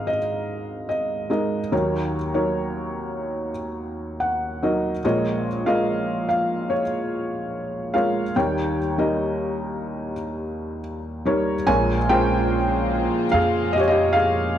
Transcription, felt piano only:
Already playing: G#1 G#2 G#3 D#4 A#4 D#5 F5
0.07 D#5
0.89 D#5
1.30 G#3 D#4 A#4 D#5
1.72 D#2 D#3 F#3 D#4 A#4 C#5
2.34 F#3 D#4 A#4 C#5
4.20 F#5
4.63 F#3 D#4 A#4 D#5
5.04 A#1 A#2 G#3 F4 A#4 C#5 D#5
5.66 G#3 F4 A#4 D#5 F5
6.29 F5
6.70 C#5
7.94 G#3 F4 A#4 C#5 F5
8.36 D#2 D#3 G3 D#4 A#4 C#5 G5
8.98 G3 D#4 A#4 D#5
11.25 G3 D#4 A#4 C#5
11.67 A#1 A#2 G#3 F4 A#4 C#5 G#5
12.09 G#3 F4 A#4 C5 G5
13.32 G#4 F5
13.73 G4 D#5
13.80 C#5
13.88 G4 D#5
14.13 G#4 F5

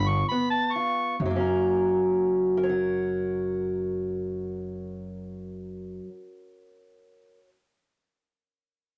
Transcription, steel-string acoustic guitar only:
Already playing: G2
0.31 B3
0.76 F4
1.21 F#2
1.26 F#3
1.30 A#3
1.36 C#4
1.40 A#4
2.57 A#4
2.63 C#5
2.69 F#5

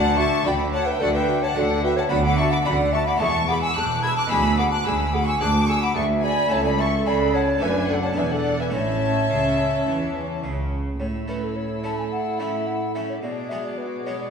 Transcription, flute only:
Already playing: D5
0.18 E5
0.46 D5
0.73 C#5
0.86 B4
1.00 A4
1.14 B4
1.42 C#5
1.56 A4
1.84 B4
1.97 C#5
2.10 D5
2.24 F#5
2.38 E5
2.51 F#5
2.65 D5
2.93 E5
3.08 F#5
3.21 E5
3.48 F#5
3.62 G#5
3.76 A5
4.03 B5
4.16 A5
4.30 G#5
4.58 F#5
4.72 A5
4.86 G#5
5.14 F#5
5.28 G#5
5.42 A5
5.69 G#5
5.82 F#5
5.97 E5
6.24 D5
6.52 C#5
6.65 D5
6.79 E5
7.07 D5
7.34 C#5
7.62 B4
7.89 A4
8.03 C#5
8.17 B4
8.31 A4
8.60 B4
8.74 C#5
11.00 C#5
11.29 B4
11.44 A4
11.56 C#5
11.84 A5
11.98 G#5
12.11 F#5
12.39 E5
12.67 F#5
12.95 E5
13.09 C#5
13.22 D5
13.49 E5
13.64 D5
13.78 B4
14.05 C#5
14.20 D5

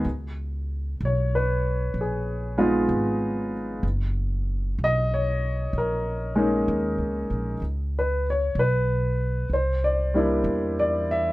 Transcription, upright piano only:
1.05 C#5
1.35 B4
2.01 G#4
2.58 G#3 B3 D#4 F4
4.84 D#5
5.14 C#5
5.78 A#4
6.35 G#3 A#3 C#4 D#4
7.99 B4
8.30 C#5
8.59 B4
9.53 C5
9.84 D5
10.14 G3 A#3 D4 E4
10.79 D5
11.11 E5

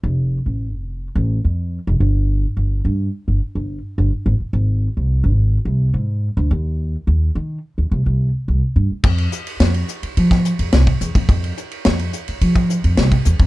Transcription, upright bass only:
0.03 F1
0.46 A1
0.74 F1
1.16 A1
1.45 F2
1.87 F1
2.00 G1
2.57 G1
2.85 G2
3.28 G1
3.55 G1
3.98 G1
4.26 G#1
4.40 muted upright bass stroke
4.53 G#1
4.97 C2
5.24 G#1
5.65 C2
5.94 G#2
6.37 D2
6.51 D#2
7.07 D#2
7.35 D#3
7.78 D#2
7.91 C2
8.06 C2
8.48 C2
8.76 G2
8.91 muted upright bass stroke
9.03 F2
9.60 F2
10.03 muted upright bass stroke
10.17 F3
10.59 F2
10.73 C2
11.01 E2
11.15 F2
11.29 F2
11.86 F2
12.28 muted upright bass stroke
12.41 F3
12.84 F2
12.98 C2
13.26 E2
13.39 F2

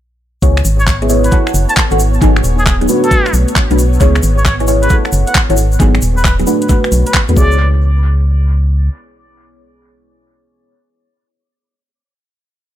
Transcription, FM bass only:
0.42 C#2
0.65 G#1
1.54 F#1
1.91 G#1
2.22 G#1
2.44 D#1
3.33 B1
3.71 B1
4.01 C#2
4.23 G#1
5.13 F#1
5.50 G#1
5.80 G#1
6.02 D#1
6.92 B1
7.29 E2
7.37 C#2

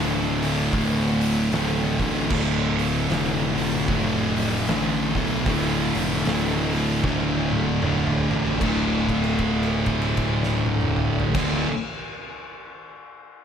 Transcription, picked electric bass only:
Already playing: D1
0.73 D1
1.50 D1
1.99 A1
2.30 D1
3.10 F1
3.89 F1
4.68 A1
5.15 B1
5.46 D1
5.95 F1
6.25 D1
7.04 D1
7.82 D1
8.31 A1
8.61 D1
11.34 D1

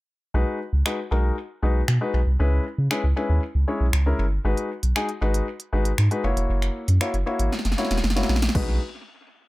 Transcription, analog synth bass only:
0.34 B1
0.73 C#2
1.12 B1
1.63 B1
1.88 B2
2.14 B1
2.27 C2
2.40 C#2
2.78 C#3
3.04 C#2
3.29 D#2
3.55 C#2
3.81 B1
3.93 C#2
4.19 G1
4.45 G#1
4.83 B1
5.22 G#1
5.73 G#1
5.98 G#2
6.24 F#1
6.37 F1
6.50 F#1
6.88 F#2
7.14 F#1
7.40 G#1
7.65 F#1
7.91 E1
8.04 F#1
8.29 A#1
8.55 B1

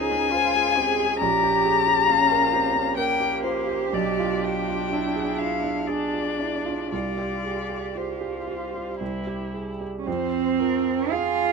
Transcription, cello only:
Already playing: G#4
0.32 F4
0.76 G#4
1.19 G4
2.07 F4
2.97 G4
4.93 E4
5.89 D4
6.92 G4
9.98 C#4
10.07 C4
11.11 F4

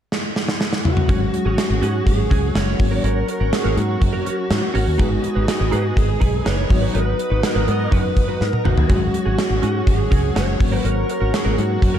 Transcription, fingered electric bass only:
1.09 G#1
1.46 G#1
1.70 G#1
1.82 G#2
2.07 G#1
2.31 C#2
2.55 F#1
2.80 G#1
3.04 G#1
3.41 G#1
3.65 G#1
3.77 G#2
4.02 F#2
4.51 G#2
4.75 G#1
4.87 D#2
5.00 G#1
5.36 G#1
5.61 G#1
5.73 G#2
5.97 G#1
6.22 B1
6.46 F#1
6.70 G#1
6.95 G#1
7.31 G#1
7.56 G#1
7.68 G#2
7.92 F#2
8.41 G#2
8.65 G#1
8.77 D#2
8.90 G#1
9.26 G#1
9.50 G#1
9.63 G#2
9.87 G#1
10.12 C#2
10.36 F#1
10.60 G#1
10.85 G#1
11.21 G#1
11.46 G#1
11.58 G#2
11.83 F#2

